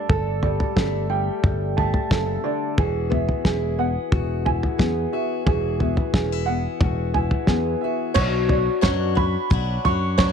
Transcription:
Already playing: steel-string acoustic guitar A3, upright piano D5 A5
0.09 fingered electric bass G1, upright piano A4, steel-string acoustic guitar A4, kick, floor tom
0.43 steel-string acoustic guitar G3, upright piano D5, floor tom
0.60 floor tom
0.76 fingered electric bass G1, steel-string acoustic guitar A3, upright piano A4, kick, snare
1.10 steel-string acoustic guitar G3, upright piano G5
1.44 fingered electric bass G1, kick, floor tom
1.77 steel-string acoustic guitar A3, upright piano A5, floor tom
1.94 floor tom
2.11 fingered electric bass F#1, steel-string acoustic guitar C#3, upright piano A4, kick, snare
2.44 steel-string acoustic guitar D3, upright piano D5
2.78 fingered electric bass E1, steel-string acoustic guitar E3 F#4, upright piano G#4, kick, floor tom
3.10 steel-string acoustic guitar B3, upright piano E5, floor tom
3.29 floor tom
3.45 fingered electric bass E1, steel-string acoustic guitar E4, upright piano G#4, kick, snare
3.78 steel-string acoustic guitar B3, upright piano F#5
4.12 fingered electric bass E1, steel-string acoustic guitar F#4, kick, floor tom
4.45 steel-string acoustic guitar E4, upright piano G#5, floor tom
4.63 floor tom
4.78 fingered electric bass E2, steel-string acoustic guitar B3, upright piano G#4, kick, snare
5.12 steel-string acoustic guitar F#4, upright piano E5
5.46 fingered electric bass E1, steel-string acoustic guitar E3 F#4, upright piano G#4, kick, floor tom
5.80 steel-string acoustic guitar B3, upright piano E5, floor tom
5.97 floor tom
6.14 fingered electric bass E1, steel-string acoustic guitar C#4, upright piano G#4, kick, snare
6.32 steel-string acoustic guitar E4
6.46 steel-string acoustic guitar B3, upright piano F#5
6.81 fingered electric bass E1, steel-string acoustic guitar F#4, kick, floor tom
7.14 steel-string acoustic guitar E4, upright piano G#5, floor tom
7.31 floor tom
7.47 fingered electric bass E2, steel-string acoustic guitar B3, upright piano G#4, kick, snare
7.81 steel-string acoustic guitar F#4, upright piano E5
8.14 fingered electric bass B1, steel-string acoustic guitar B2 F#3 D4 F#4, upright piano C#5, kick, floor tom, crash
8.49 upright piano D5, floor tom
8.81 fingered electric bass F#2, steel-string acoustic guitar B2 F#3 D4 F#4, upright piano C#5, kick, snare, floor tom
9.15 steel-string acoustic guitar D4 F#4, upright piano B5, floor tom
9.50 fingered electric bass B1, steel-string acoustic guitar F#3 D4 F#4, kick, floor tom
9.85 fingered electric bass F#2, steel-string acoustic guitar C#4 D4 F#4, upright piano C#6, floor tom
10.18 steel-string acoustic guitar B2 F#3 D4 F#4, upright piano C#5, kick, snare, floor tom

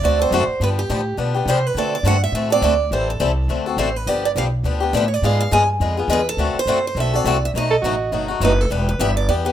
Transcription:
0.01 upright bass D2, steel-string acoustic guitar D3 A3 C4 F#4 A4 D5
0.19 steel-string acoustic guitar C4 F#4 A4 C5
0.31 upright bass F#2, steel-string acoustic guitar D3 A3 C4 F#4 A4
0.47 muted upright bass stroke
0.60 upright bass G2, steel-string acoustic guitar D3 F3 B3 D4 G4 B4
0.79 steel-string acoustic guitar G4
0.90 upright bass A2, steel-string acoustic guitar D3 F3 B3 D4 G4
1.17 upright bass B2, steel-string acoustic guitar D3 F3 B3 D4 G4
1.34 steel-string acoustic guitar B3 D4 G4
1.46 upright bass C3, steel-string acoustic guitar D3 F3 B3 D4 G4
1.50 steel-string acoustic guitar C5
1.67 steel-string acoustic guitar B4
1.75 upright bass D3, steel-string acoustic guitar D3 A3 C4 F#4 A4 D5
1.95 steel-string acoustic guitar D5
2.03 upright bass G2, steel-string acoustic guitar D3 A3 C4 F#4 A4
2.07 steel-string acoustic guitar F#5
2.24 steel-string acoustic guitar E5
2.32 upright bass A2, steel-string acoustic guitar D3 A3 C4 F#4 A4 E5
2.50 steel-string acoustic guitar C4 F#4 A4 D5
2.61 upright bass D2, steel-string acoustic guitar D3 A3 C4 F#4 A4
2.91 upright bass A1, steel-string acoustic guitar E3 G3 C4 E4 A4 C5
3.10 steel-string acoustic guitar A4
3.20 upright bass C2, steel-string acoustic guitar E3 G3 C4 E4 A4
3.48 upright bass D2, steel-string acoustic guitar D3 A3 C4 F#4 A4
3.66 steel-string acoustic guitar C4 F#4 A4
3.77 upright bass A1, steel-string acoustic guitar D3 A3 C4 F#4 A4 C5
3.96 steel-string acoustic guitar B4
4.07 upright bass G1, steel-string acoustic guitar D3 F3 B3 D4 G4 D5
4.25 steel-string acoustic guitar D5
4.35 upright bass B1, steel-string acoustic guitar D3 F3 B3 D4 G4 F5
4.63 upright bass D2, steel-string acoustic guitar D3 F3 B3 D4 G4
4.80 steel-string acoustic guitar B3 D4 G4
4.93 upright bass A2, steel-string acoustic guitar D3 F3 B3 D4 G4
4.97 steel-string acoustic guitar E5
5.08 steel-string acoustic guitar C#5
5.14 steel-string acoustic guitar D5
5.22 upright bass G#2, steel-string acoustic guitar D3 G#3 B3 F4 G#4 F5
5.41 steel-string acoustic guitar F5
5.51 upright bass G2, steel-string acoustic guitar D3 G#3 B3 F4 G#4 G#5
5.80 upright bass F2, steel-string acoustic guitar D3 G#3 B3 F4 G#4
5.97 steel-string acoustic guitar B3 F4 G#4
6.08 upright bass E2, steel-string acoustic guitar D3 G#3 B3 F4 G#4
6.13 steel-string acoustic guitar B4
6.29 steel-string acoustic guitar A4
6.37 upright bass D2, steel-string acoustic guitar D3 A3 C4 F#4 A4
6.55 muted upright bass stroke
6.59 steel-string acoustic guitar C5
6.66 upright bass F#2, steel-string acoustic guitar D3 A3 C4 F#4 A4
6.87 steel-string acoustic guitar C5
6.95 upright bass B1, steel-string acoustic guitar D3 A3 C4 F#4 A4
7.00 steel-string acoustic guitar E5
7.14 steel-string acoustic guitar C4 F#4 A4 D5
7.24 upright bass C2, steel-string acoustic guitar D3 A3 C4 F#4 A4
7.45 steel-string acoustic guitar E5
7.54 upright bass B1, steel-string acoustic guitar B2 F#3 A3 D#4 F#4 B4 D#5
7.70 soprano saxophone A4
7.82 upright bass A1, steel-string acoustic guitar B2 F#3 A3 D#4 F#4 B4, soprano saxophone F#4
8.12 upright bass G1, steel-string acoustic guitar B2 F#3 A3 D#4 F#4 B4, soprano saxophone D#4
8.28 steel-string acoustic guitar A3 D#4 F#4
8.40 upright bass F#1, steel-string acoustic guitar B2 F#3 A3 D#4 F#4 B4
8.45 steel-string acoustic guitar B4
8.61 steel-string acoustic guitar A4
8.70 upright bass E1, steel-string acoustic guitar E3 G3 B3 D4 E4 G4 B4
8.89 steel-string acoustic guitar B4
8.99 upright bass G1, steel-string acoustic guitar E3 G3 B3 D4 E4 G4 B4 E5
9.17 steel-string acoustic guitar D5
9.28 upright bass E2, steel-string acoustic guitar E3 G3 B3 D4 E4 G4 B4 D5
9.45 steel-string acoustic guitar B3 D4 G4 B4

